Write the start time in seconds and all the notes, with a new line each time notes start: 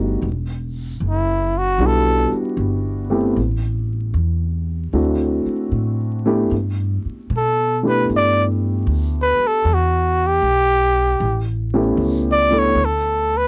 Already playing: G1 G3 A3 B3 D#4 F#4
0.22 E1
1.00 F#1
1.09 E4
1.58 F#4
1.78 B1 G3 B3 D4 E4
1.82 F#4
1.86 A4
2.31 muted upright bass stroke
2.57 G1
3.10 A3 B3 C4 E4 G4
3.36 A1
4.14 E2
4.93 D2 A3 C4 D4 E4 F#4
5.46 muted upright bass stroke
5.72 A2
6.26 A3 B3 D4 E4 G4
6.51 G2
7.05 muted upright bass stroke
7.30 B2
7.37 A4
7.83 A3 B3 D4 E4 G4
7.88 B4
8.09 G2
8.16 D5
8.87 D2
9.22 B4
9.39 muted upright bass stroke
9.47 A4
9.65 E2
9.74 F#4
10.26 G4
10.42 B1
11.20 A1
11.74 A3 B3 C#4 E4 G4
11.97 C#2
12.32 D5
12.51 A3 B3 D4 E4 A4
12.59 C#5
12.75 D2
12.85 A4
13.37 B4